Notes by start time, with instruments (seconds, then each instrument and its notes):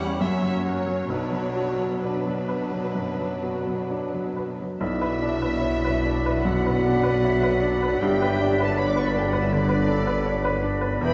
Already playing: cello section E2, grand piano E2 G4, viola section G3 C#4, bassoon G3, clarinet C#4, violin section E4 C#5 F#5
0.00 grand piano G3
0.21 grand piano F#2, cello section F#2, viola section F#3 A#3, bassoon F#3, violin section C#4 C#5 E5, clarinet C#4
0.42 grand piano F#3
0.65 grand piano F#4, violin section C#5
0.86 grand piano F#3
1.10 grand piano B1, cello section B2, viola section F#3 B3, bassoon F#3, violin section D4 B4 C#5, clarinet D4
1.32 grand piano F#3
1.56 grand piano F#4
1.78 grand piano F#3
2.02 viola section F#3 B3, bassoon F#3, grand piano D4, clarinet D4, violin section D4 B4
2.27 grand piano F#3
2.48 grand piano B4
2.72 grand piano F#3
2.95 grand piano F#2
3.20 grand piano F#3
3.43 grand piano F#4
3.66 grand piano F#3
3.91 grand piano D4
4.14 grand piano F#3
4.37 grand piano B4
4.61 grand piano F#3
4.80 grand piano B1, tuba B1, double bass section B1, cello section B2, bassoon F#3, viola section B3 D4, french horn section E4, clarinet D5, violin section E5, oboe B5
5.01 grand piano B4
5.22 grand piano D4
5.42 grand piano B4
5.61 grand piano C#5
5.84 grand piano B4
6.05 grand piano D4
6.26 grand piano B4
6.45 grand piano F#2, french horn section F#4, violin section F#5, flute F#5
6.66 grand piano B4
6.85 grand piano D4
7.03 grand piano B4
7.25 grand piano C#5, flute E5
7.43 grand piano B4
7.62 grand piano D4, flute D5
7.83 grand piano B4
8.01 tuba G1, double bass section G1, cello section G2, grand piano G2, french horn section G4, flute E5, violin section G5
8.22 grand piano B4
8.41 grand piano D4
8.60 french horn section A4, grand piano B4, violin section A5
8.77 french horn section B4, grand piano C#5, flute D5, violin section B5
8.89 french horn section D5, violin section D6
8.96 grand piano B4, french horn section C#5, violin section C#6
9.06 french horn section B4, violin section B5
9.14 grand piano D4, french horn section A4, violin section A5
9.20 violin section G5
9.24 french horn section G4
9.30 french horn section F#4, grand piano B4, violin section F#5
9.41 french horn section E4, violin section E5
9.52 grand piano D3, french horn section D4, flute B4, violin section D5
9.69 grand piano B4
9.88 grand piano D4, flute A4
10.07 grand piano B4
10.26 flute B4, grand piano C#5
10.45 grand piano B4
10.63 grand piano D4, flute D5
10.81 grand piano B4
11.01 tuba E1, grand piano E2, cello section E2, bassoon E3, viola section G3 D4, french horn section B4, clarinet D5, oboe G5, violin section B5
11.05 double bass section E1, flute E5